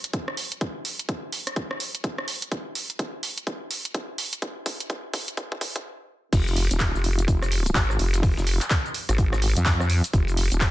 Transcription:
0.04 closed hi-hat
0.13 kick, closed hi-hat
0.28 cross-stick
0.37 open hi-hat
0.52 closed hi-hat
0.61 kick, closed hi-hat
0.85 open hi-hat
0.99 closed hi-hat
1.09 kick, closed hi-hat
1.32 open hi-hat
1.47 cross-stick, closed hi-hat
1.56 kick, closed hi-hat
1.71 cross-stick
1.80 open hi-hat
1.95 closed hi-hat
2.04 kick, closed hi-hat
2.18 cross-stick
2.28 open hi-hat
2.42 closed hi-hat
2.52 kick, closed hi-hat
2.75 open hi-hat
2.90 closed hi-hat
2.99 kick, closed hi-hat
3.23 open hi-hat
3.38 closed hi-hat
3.47 kick, closed hi-hat
3.71 open hi-hat
3.85 closed hi-hat
3.94 kick, closed hi-hat
4.18 open hi-hat
4.33 closed hi-hat
4.42 kick, closed hi-hat
4.66 kick, open hi-hat
4.80 closed hi-hat
4.90 kick, closed hi-hat
5.14 kick, open hi-hat
5.28 closed hi-hat
5.37 kick, closed hi-hat
5.52 kick
5.61 kick, open hi-hat
5.76 kick, closed hi-hat
6.33 F1, kick, closed hi-hat, crash, shaker
6.47 closed hi-hat, shaker
6.56 closed hi-hat, open hi-hat
6.71 D#1, closed hi-hat, shaker
6.80 kick, snare, clap, closed hi-hat, shaker
6.95 F1, shaker
7.04 closed hi-hat, open hi-hat
7.19 closed hi-hat, shaker
7.28 F1, kick, closed hi-hat, shaker
7.42 cross-stick, closed hi-hat, shaker
7.52 closed hi-hat, open hi-hat
7.66 closed hi-hat, shaker
7.75 G#1, kick, snare, clap, closed hi-hat, shaker
7.90 cross-stick, shaker
7.99 F1, closed hi-hat, open hi-hat
8.14 snare, closed hi-hat, shaker
8.23 kick, closed hi-hat, open hi-hat, shaker
8.37 F1, snare, shaker
8.47 closed hi-hat, open hi-hat
8.61 clap, closed hi-hat, shaker
8.70 kick, snare, clap, closed hi-hat, shaker
8.86 shaker
8.94 closed hi-hat, open hi-hat
9.09 G#1, cross-stick, closed hi-hat, shaker
9.18 kick, closed hi-hat, shaker
9.33 cross-stick, snare, shaker
9.42 closed hi-hat, open hi-hat
9.57 F2, closed hi-hat, shaker
9.66 kick, snare, clap, closed hi-hat, shaker
9.80 cross-stick, shaker
9.90 closed hi-hat, open hi-hat
10.04 closed hi-hat, shaker
10.13 F1, kick, closed hi-hat, shaker
10.28 closed hi-hat, shaker
10.37 closed hi-hat, open hi-hat
10.52 D#1, closed hi-hat, shaker
10.61 kick, snare, clap, closed hi-hat, shaker

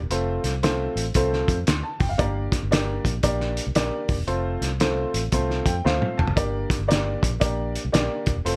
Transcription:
0.01 E1
0.10 F1 A3 C4 F4 A4 C5, closed hi-hat
0.44 C2, snare, closed hi-hat
0.63 A3 C4 F4 A4 C5, snare, closed hi-hat
0.96 A1, closed hi-hat
1.14 C2 A3 C4 F4 A4 C5, kick, closed hi-hat
1.33 snare
1.48 F2, kick, closed hi-hat
1.67 D2 C6, snare, closed hi-hat
1.83 A5
2.00 F1 G5, kick, open hi-hat
2.09 F#1 F5
2.18 G1 A#3 D4 G4 A#4 D5, kick, closed hi-hat
2.52 kick, snare, closed hi-hat
2.63 G1
2.71 A#3 D4 G4 A#4 D5, snare, closed hi-hat
3.05 A#1, kick, closed hi-hat
3.23 A#1 A#3 D4 G4 A#4 D5, kick, closed hi-hat
3.41 snare
3.57 closed hi-hat
3.67 C2
3.75 A#1 A#3 D4 G4 A#4 D5, snare, closed hi-hat
4.09 D#1, kick, open hi-hat
4.18 E1
4.27 F1 A3 C4 F4 A4 C5, closed hi-hat
4.61 C2, snare, closed hi-hat
4.80 A3 C4 F4 A4 C5, snare, closed hi-hat
5.14 A1, closed hi-hat
5.32 C2 A3 C4 F4 A4 C5, kick, closed hi-hat
5.50 snare
5.66 F2 G5, kick, closed hi-hat
5.84 D2 A3 C4 F4 A4 C5 F5, snare
6.02 high tom
6.18 F1 A5, mid tom
6.27 F#1, floor tom
6.36 G1 A#3 D4 G4 A#4 D5, kick, closed hi-hat
6.70 kick, snare, closed hi-hat
6.79 G1
6.88 A#3 D4 G4 A#4 D5, snare, closed hi-hat
7.23 A#1, kick, closed hi-hat
7.40 A#1 A#3 D4 G4 A#4 D5, kick, closed hi-hat
7.75 closed hi-hat
7.85 C2
7.92 A#1 A#3 D4 G4 A#4 D5, snare, closed hi-hat
8.26 D#1, kick, closed hi-hat
8.36 E1
8.45 F1 A3 C4 F4 A4 C5, closed hi-hat

